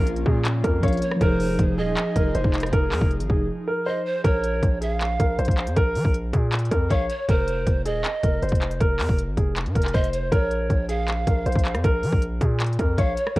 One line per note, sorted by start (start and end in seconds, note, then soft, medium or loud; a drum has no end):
0.00 0.25 A#1 loud
0.00 0.76 F3 medium
0.00 1.18 A#3 medium
0.00 0.79 C#4 medium
0.00 1.18 C#4 medium
0.00 1.18 F4 medium
0.00 0.82 A#4 medium
0.07 closed hi-hat medium
0.16 closed hi-hat soft
0.26 0.62 A#2 loud
0.26 0.42 G#4 medium
0.26 kick medium
0.45 clap loud
0.45 closed hi-hat medium
0.64 0.82 F2 loud
0.64 0.80 A#4 medium
0.64 kick medium
0.64 closed hi-hat medium
0.80 1.01 A#1 loud
0.80 1.15 F3 medium
0.80 1.21 C#4 soft
0.80 1.19 C#5 medium
0.80 1.01 F5 medium
0.80 kick medium
0.80 closed hi-hat medium
0.86 1.22 A#4 medium
0.86 closed hi-hat medium
0.92 closed hi-hat medium
0.97 closed hi-hat soft
1.02 1.20 C#5 medium
1.02 closed hi-hat medium
1.11 cross-stick medium
1.16 4.18 F3 medium
1.21 1.57 F1 loud
1.21 4.22 F3 medium
1.21 4.22 D#4 medium
1.21 4.21 D#4 medium
1.21 4.22 G#4 medium
1.21 1.57 A#4 loud
1.21 1.74 C5 loud
1.21 kick loud
1.21 closed hi-hat medium
1.27 4.24 G#4 medium
1.40 open hi-hat medium
1.59 1.79 F1 loud
1.59 kick medium
1.59 closed hi-hat medium
1.78 1.96 D#1 loud
1.78 1.94 G#4 medium
1.78 2.69 D#5 medium
1.97 clap loud
1.97 closed hi-hat medium
2.16 2.34 F1 loud
2.16 2.32 A#4 medium
2.16 kick loud
2.16 closed hi-hat medium
2.35 2.44 F1 loud
2.35 2.71 C5 medium
2.35 closed hi-hat medium
2.44 2.72 F1 loud
2.44 kick loud
2.54 clap loud
2.54 closed hi-hat medium
2.60 cross-stick medium
2.60 closed hi-hat medium
2.66 closed hi-hat medium
2.73 2.93 F1 loud
2.73 3.08 A#4 loud
2.73 kick loud
2.73 closed hi-hat medium
2.92 3.01 F2 loud
2.92 clap loud
2.92 open hi-hat medium
3.01 3.22 F1 loud
3.01 kick loud
3.11 closed hi-hat soft
3.20 3.29 G#1 loud
3.20 closed hi-hat medium
3.30 3.49 F1 loud
3.30 3.46 G#4 medium
3.30 kick medium
3.67 3.83 A#4 medium
3.86 4.22 C5 medium
3.86 4.05 D#5 medium
4.06 4.24 C5 medium
4.24 4.61 A#1 loud
4.24 4.60 A#4 loud
4.24 4.78 C#5 loud
4.24 kick loud
4.24 closed hi-hat medium
4.44 closed hi-hat medium
4.63 5.17 A#1 loud
4.63 kick loud
4.63 closed hi-hat medium
4.81 4.97 G#4 medium
4.81 4.93 E5 medium
4.81 closed hi-hat medium
4.93 5.73 F5 medium
5.01 clap loud
5.01 closed hi-hat medium
5.20 5.38 A#1 loud
5.20 5.36 A#4 medium
5.20 kick medium
5.20 closed hi-hat medium
5.39 5.47 A#1 loud
5.39 5.74 C5 medium
5.39 closed hi-hat soft
5.45 5.69 A#1 loud
5.45 kick medium
5.45 closed hi-hat medium
5.51 closed hi-hat medium
5.58 clap medium
5.58 closed hi-hat soft
5.67 5.76 F2 loud
5.67 closed hi-hat medium
5.77 5.97 A#1 loud
5.77 6.12 A#4 loud
5.77 kick loud
5.77 closed hi-hat medium
5.95 6.04 F3 loud
5.95 open hi-hat medium
6.05 6.32 A#1 loud
6.05 kick loud
6.14 closed hi-hat medium
6.33 6.70 A#2 loud
6.33 6.50 G#4 medium
6.33 kick medium
6.33 closed hi-hat medium
6.52 clap loud
6.52 closed hi-hat medium
6.59 closed hi-hat medium
6.65 closed hi-hat soft
6.71 6.90 F2 loud
6.71 6.87 A#4 medium
6.71 kick loud
6.71 closed hi-hat medium
6.90 7.09 A#1 loud
6.90 7.26 C#5 medium
6.90 7.09 F5 medium
6.90 kick medium
6.90 closed hi-hat medium
7.09 7.28 C#5 medium
7.09 closed hi-hat medium
7.28 7.65 F1 loud
7.28 7.65 A#4 loud
7.28 7.82 C5 loud
7.28 kick loud
7.28 closed hi-hat medium
7.47 closed hi-hat medium
7.66 7.87 F1 loud
7.66 kick medium
7.66 closed hi-hat medium
7.85 8.03 D#1 loud
7.85 8.01 G#4 medium
7.85 8.76 D#5 loud
7.85 closed hi-hat medium
8.04 clap loud
8.04 closed hi-hat medium
8.23 8.42 F1 loud
8.23 8.39 A#4 medium
8.23 kick medium
8.23 closed hi-hat medium
8.42 8.51 F1 loud
8.42 8.78 C5 medium
8.42 closed hi-hat soft
8.49 8.79 F1 loud
8.49 kick medium
8.49 closed hi-hat medium
8.55 closed hi-hat medium
8.61 clap medium
8.61 closed hi-hat soft
8.71 closed hi-hat medium
8.80 9.01 F1 loud
8.80 9.16 A#4 loud
8.80 kick loud
8.80 closed hi-hat medium
8.99 9.08 F2 loud
8.99 clap loud
8.99 open hi-hat medium
9.09 9.29 F1 loud
9.09 kick medium
9.18 closed hi-hat medium
9.28 9.37 G#1 loud
9.37 9.67 F1 loud
9.37 9.53 G#4 medium
9.37 kick medium
9.37 closed hi-hat medium
9.56 clap loud
9.56 closed hi-hat medium
9.66 9.75 G#2 loud
9.66 closed hi-hat soft
9.75 9.94 F1 loud
9.75 9.91 A#4 medium
9.75 kick medium
9.75 closed hi-hat medium
9.82 clap medium
9.82 closed hi-hat medium
9.88 closed hi-hat medium
9.94 10.31 F1 loud
9.94 10.30 C5 medium
9.94 10.12 D#5 medium
9.94 kick medium
9.94 closed hi-hat soft
10.04 closed hi-hat medium
10.13 10.31 C5 medium
10.13 closed hi-hat medium
10.32 10.69 A#1 loud
10.32 10.68 A#4 loud
10.32 10.86 C#5 loud
10.32 kick loud
10.32 closed hi-hat medium
10.51 closed hi-hat medium
10.70 11.25 A#1 loud
10.70 kick medium
10.70 closed hi-hat medium
10.89 11.05 G#4 medium
10.89 11.80 F5 medium
10.89 closed hi-hat medium
11.08 clap loud
11.08 closed hi-hat medium
11.27 11.45 A#1 loud
11.27 11.43 A#4 medium
11.27 kick medium
11.27 closed hi-hat medium
11.46 11.55 A#1 loud
11.46 11.82 C5 medium
11.46 closed hi-hat soft
11.52 11.76 A#1 loud
11.52 kick medium
11.52 closed hi-hat medium
11.59 closed hi-hat medium
11.65 clap loud
11.65 closed hi-hat soft
11.75 11.84 F2 loud
11.75 cross-stick medium
11.75 closed hi-hat medium
11.84 12.05 A#1 loud
11.84 12.20 A#4 loud
11.84 kick loud
11.84 closed hi-hat medium
12.03 12.12 F3 loud
12.03 open hi-hat medium
12.13 12.40 A#1 loud
12.13 kick medium
12.22 closed hi-hat medium
12.41 12.78 A#2 loud
12.41 12.57 G#4 medium
12.41 kick medium
12.41 closed hi-hat medium
12.60 clap loud
12.60 closed hi-hat medium
12.66 closed hi-hat medium
12.73 closed hi-hat soft
12.79 12.97 F2 loud
12.79 12.95 A#4 medium
12.79 kick medium
12.79 closed hi-hat medium
12.98 13.16 A#1 loud
12.98 13.34 C#5 medium
12.98 13.16 F5 medium
12.98 kick medium
12.98 closed hi-hat medium
13.17 13.35 C#5 medium
13.17 closed hi-hat medium
13.27 cross-stick medium
13.36 13.39 F1 loud
13.36 13.39 C5 loud
13.36 kick loud
13.36 closed hi-hat medium